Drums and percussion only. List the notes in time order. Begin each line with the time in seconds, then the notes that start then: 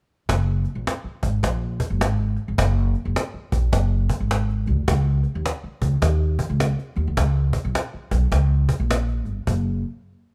0.29 cajon bass, cajon slap
0.65 cajon slap
0.87 cajon slap
1.23 cajon bass
1.43 cajon bass, cajon slap
1.80 cajon bass
2.01 cajon slap
2.19 cajon slap
2.37 cajon slap
2.58 cajon bass, cajon slap
2.94 cajon slap
3.16 cajon slap
3.52 cajon bass
3.73 cajon bass, cajon slap
4.09 cajon bass
4.31 cajon slap
4.49 cajon slap
4.66 cajon slap
4.88 cajon bass, cajon slap
5.23 cajon slap
5.46 cajon slap
5.82 cajon bass
6.02 cajon bass, cajon slap
6.39 cajon bass
6.60 cajon slap
6.79 cajon slap
6.96 cajon slap
7.17 cajon bass, cajon slap
7.53 cajon bass
7.75 cajon slap
8.11 cajon bass
8.32 cajon bass, cajon slap
8.69 cajon bass
8.91 cajon slap
9.08 cajon slap
9.25 cajon slap
9.47 cajon bass